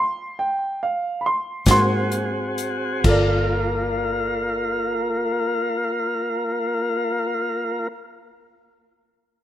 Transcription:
Already playing: C6
0.39 G5
0.83 F5
1.21 B5
1.26 C6
1.66 G#2 A#3 C4 F#4 G#4, kick, snare, closed hi-hat
1.71 C6
2.12 closed hi-hat
2.58 closed hi-hat
3.04 G1 A#3 F4 A4 A#4, kick, crash
3.08 D5

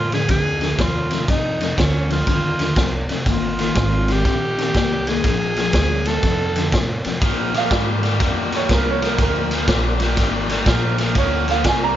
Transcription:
Already playing: A2 F4
0.12 F2 D3 G#4, snare, ride
0.28 D2 F2 D3 G#4, kick, snare, ride
0.61 F2 D3, snare, ride
0.78 D#2 F2 C3 F4, kick, snare, ride
1.11 F2 C3, snare, ride
1.28 F2 C3 D#4, kick, snare, ride
1.61 F2 C3, snare, ride
1.78 D2 F2 D3 C#4, kick, snare, ride
2.09 F2 D3 F4, snare, ride
2.27 D#2 F2 D3, kick, snare, ride
2.59 F2 D3, snare, ride
2.76 C2 F2 C3, kick, snare, ride
3.09 F2 C3, muted upright bass stroke, snare, ride
3.26 G1 D#3 A#3, kick, snare, ride
3.31 F4
3.59 D#3 A#3, snare, ride
3.75 G#1 D#3 C4, kick, snare, ride
4.08 D#3 C4 G4, snare, ride
4.24 A#1 D#3 C4, kick, snare, ride
4.58 D#3 C4, snare, ride
4.74 C2 D#3 A#3, kick, snare, ride
5.07 D#3 A#3 G#4, snare, ride
5.24 A#1 A#2 F3, kick, snare, ride
5.56 A#2 F3, snare, ride
5.73 D2 A#2 G3, kick, snare, ride
6.06 A#2 G3 A4, snare, ride
6.23 F2 C3, kick, snare, ride
6.56 F2 D3, snare, ride
6.72 F2 A2 C3, kick, snare, ride
7.05 F2 C3, muted upright bass stroke, snare, ride
7.21 A#2 F3, kick, snare, ride
7.53 A#2 F3 E5, snare, ride
7.58 F5
7.71 G#2 A#2 G3, kick, snare, ride
8.03 A#2 G3, snare, ride
8.20 F2 A#2 G3, kick, snare, ride
8.52 A#2 G3, snare, ride
8.57 C#5
8.69 C2 A#2 F3, kick, snare, ride
8.74 A#4
8.91 C#5
9.02 A#2 F3, snare, ride
9.07 A#4
9.18 D2 A#2 F3 A#4, kick, snare, ride
9.51 A#2 F3, snare, ride
9.67 A#1 A#2 G3, kick, snare, ride
10.00 A#2 G3, snare, ride
10.17 G#1 A#2 G3, kick, snare, ride
10.49 A#2 G3, snare, ride
10.66 A#1 A#2 F3, kick, snare, ride
10.98 A#2 F3, snare, ride
11.15 D2 A#2 F3 C#5, kick, snare, ride
11.48 A#2 F3 F5, snare, ride
11.64 C2 A#2 G3, kick, snare, ride
11.69 G#5
11.84 A#5

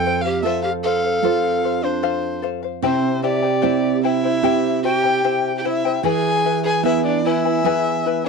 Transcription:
Already playing: F2 A4 G5
0.05 A4 C5 F5
0.21 G4 F5
0.25 C5
0.42 C4 F4 A4 C5 E5 F5
0.63 G4 F5
0.83 A4 C5 F5
1.04 C5 F5
1.22 C4 F4 A4 C5 F5
1.64 A4 C5 F5
1.83 D4 C5 F5
2.03 A4 C5 F5
2.42 A4 C5 F5
2.63 C5 F5
2.82 C3 C4 E4 G4 C5 E5 G5
3.23 E4 G4 C5 D5 E5 G5
3.43 E4 C5 G5
3.62 C4 E4 G4 C5 E5 G5
4.03 E4 C5 E5 G5
4.24 E4 C5 G5
4.43 C4 E4 G4 C5 E5 G5
4.82 E4 F#4 C5 E5 G5
4.96 G4
5.04 E4 C5 G5
5.24 E4 G4 C5 E5 G5
5.58 G4 G5
5.63 E4 C5 E5 G5
5.85 E4 C5 G5
6.03 E3 E4 G#4 B4 E5 G#5
6.45 E4 B4 E5 G#5
6.63 E4 G#4 B4 G#5
6.83 B3 E4 G#4 B4 E5 G#5
7.05 D4 D5
7.24 E4 B4 E5 G#5
7.45 E4 B4 G#5
7.64 B3 E4 G#4 B4 E5 G#5
8.05 E4 B4 E5 G#5
8.24 D4 B4 G#5

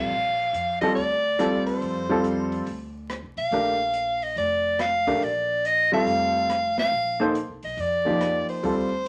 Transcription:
Already playing: G3 C4 F4 A4 F5
0.11 A#1
0.53 F2, closed hi-hat
0.81 G3 C4 F4 A4 D#5, open hi-hat
0.95 D2 D5, open hi-hat
1.39 G3 C4 F4 A4, cross-stick, closed hi-hat
1.66 C5, open hi-hat
1.81 F2, open hi-hat
2.09 G3 C4 F4 A4
2.24 closed hi-hat
2.52 open hi-hat
2.66 D2, open hi-hat
3.10 cross-stick, closed hi-hat
3.23 C2
3.37 B1 F5, open hi-hat
3.51 A#1 A3 D4 G4 A#4, open hi-hat
3.94 closed hi-hat
4.22 D#5, open hi-hat
4.36 F1 D5, open hi-hat
4.79 F5, cross-stick, snare, closed hi-hat
5.07 A3 D4 G4 A#4, kick, open hi-hat
5.21 A#1 D5, open hi-hat
5.65 D#5, closed hi-hat
5.92 G3 C4 F4 A4 F5
6.06 F1, open hi-hat
6.50 cross-stick, closed hi-hat
6.78 F5, snare, open hi-hat
6.92 A#1, open hi-hat
7.20 A#3 D#4 A4 C5
7.35 closed hi-hat
7.48 C2
7.63 B1 D#5, open hi-hat
7.77 F2 D5, open hi-hat
8.05 F3 A#3 D#4 G4
8.21 cross-stick, closed hi-hat
8.48 C5, muted upright bass stroke, open hi-hat
8.63 D2 G3 C4 F4 A4, open hi-hat

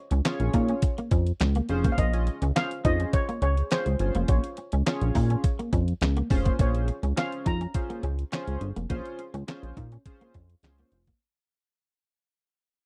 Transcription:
Already playing: C#5
0.11 C#2 C#4, closed hi-hat
0.25 C#4 F4 G#4 C#5, muted clean electric guitar stroke, snare, clap, closed hi-hat
0.40 A#1, closed hi-hat
0.54 A#2 D#4, kick, closed hi-hat
0.69 C#4, closed hi-hat
0.82 muted clean electric guitar stroke, kick, closed hi-hat
0.98 A#3, closed hi-hat
1.11 F2 C#4, kick, closed hi-hat
1.27 closed hi-hat
1.40 C#2, snare, clap, closed hi-hat
1.55 A#3, closed hi-hat
1.69 F1 C#4 F4 G#4 C5, muted clean electric guitar stroke, closed hi-hat
1.84 A#3, kick, closed hi-hat
1.92 F5
1.98 A#1 A#3 D#5, kick, closed hi-hat
2.13 C#4 F4 G#4 D#5, closed hi-hat
2.27 muted clean electric guitar stroke, closed hi-hat
2.42 C#2 C#4, closed hi-hat
2.55 C#4 F4 G#4 C5 F5, muted clean electric guitar stroke, snare, clap, closed hi-hat
2.71 closed hi-hat
2.84 F2 C#4 D#4 F4 G#4 C5 D#5, kick, closed hi-hat
3.00 C#4, closed hi-hat
3.13 C#5, muted clean electric guitar stroke, kick, closed hi-hat
3.29 A#3, closed hi-hat
3.42 C#2 C#4 C#5, closed hi-hat
3.57 G#4 C5, closed hi-hat
3.71 C#4 F4 G#4 C5, snare, clap, closed hi-hat
3.86 C#2, muted clean electric guitar stroke, closed hi-hat
3.99 G1 C#4 F4 G#4 C5, closed hi-hat
4.15 F1 A#3, closed hi-hat
4.28 A#1 A#3 C#5, kick, closed hi-hat
4.44 closed hi-hat
4.57 muted clean electric guitar stroke, closed hi-hat
4.72 C#2 C#4, closed hi-hat
4.86 C#4 F4 G#4 C#5, muted clean electric guitar stroke, snare, clap, closed hi-hat
5.01 A#1, closed hi-hat
5.15 A#2 D#4, kick, open hi-hat
5.30 C#4, closed hi-hat
5.44 muted clean electric guitar stroke, kick, closed hi-hat
5.59 A#3, closed hi-hat
5.73 F2 C#4, kick, closed hi-hat
5.88 closed hi-hat
6.01 C#2, snare, clap, closed hi-hat
6.17 A#3, closed hi-hat
6.30 F1 C#4 F4 G#4 C5, muted clean electric guitar stroke, kick, open hi-hat
6.45 A#3, kick, closed hi-hat
6.59 A#1 A#3 C#4 F4 G#4 C5 C#5, kick, closed hi-hat
6.75 closed hi-hat
6.88 muted clean electric guitar stroke, closed hi-hat
7.03 C#2 C#4, closed hi-hat
7.16 C#4 F4 G#4 C5 F5, muted clean electric guitar stroke, snare, clap, closed hi-hat
7.32 closed hi-hat
7.46 F2 D#4 A#5, kick, closed hi-hat
7.61 C#4, closed hi-hat
7.74 C#4 F4 G#4 C5, muted clean electric guitar stroke, kick, closed hi-hat
7.90 A#3, closed hi-hat
8.03 C#2 C#4, closed hi-hat
8.19 closed hi-hat
8.32 C#4 F4 G#4 C5, snare, clap, closed hi-hat
8.48 C#2, muted clean electric guitar stroke, closed hi-hat
8.61 G1, closed hi-hat
8.76 F1 A#3, closed hi-hat
8.89 A#1 A#3 C#4 F4 G#4 C5, kick, closed hi-hat
9.05 closed hi-hat
9.19 muted clean electric guitar stroke, closed hi-hat
9.34 C#2 C#4, closed hi-hat
9.47 C#4 F4 G#4 C5, muted clean electric guitar stroke, snare, clap, closed hi-hat
9.63 A#1, closed hi-hat
9.77 A#2 D#4, kick, closed hi-hat
9.92 C#4, closed hi-hat
10.06 C#4 F4 G#4 C5, muted clean electric guitar stroke, kick, closed hi-hat
10.21 A#3, closed hi-hat
10.34 F2 C#4, kick, closed hi-hat
10.50 closed hi-hat
10.63 C#2 C#4 F4 G#4 C5, snare, clap, closed hi-hat
10.78 A#3, closed hi-hat
10.92 F1, muted clean electric guitar stroke, closed hi-hat
11.07 A#3, kick, closed hi-hat

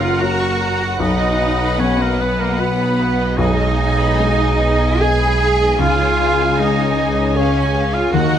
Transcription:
Already playing: F#1 F#2 C#3 F#3 A#3 F#4 A#4 F#5
0.00 F4 F5 F#5
0.19 F#4 A#4 C#5 F#5 A#5
0.39 C#6
0.59 F#4 A#5
0.81 F#5
1.00 B1 B2 B3 D#4 B4 D#5
1.20 D#5
1.40 B3 F#5
1.59 B5
1.78 F#3 B3 C#4 C#5 F#5
1.99 A#3 A#4 D#5
2.18 B3 F#4 B4
2.38 A#3 A#4 D#5
2.58 B3 F#4 B4 F#5
2.80 B5
2.99 F#4 F#5
3.20 D#5
3.37 B1 B2 G#3 D#4 G#4 B4 D#5 G#5
3.61 D#5
3.79 B3 G#5
4.00 B5
4.18 G#3 G#5
4.41 D#5
4.60 D#4 B4
4.83 D#5
5.01 G#4 D#5 G#5
5.22 B5
5.42 D#4 G#5
5.61 D#5
5.79 C#2 C#3 C#4 F4 G#4 F5
6.00 C#5
6.19 C#4 F5
6.40 G#5
6.58 G#3 D#4 D#5 F5
6.81 C#5
6.98 G#4
7.19 C#5
7.35 C#4 G#4 C#5 F5
7.58 G#5
7.75 G#4 F5
7.94 F4 C#5 F5
8.12 D#2 D#3 A#3 D#4 F#4 A#4 D#5 F#5

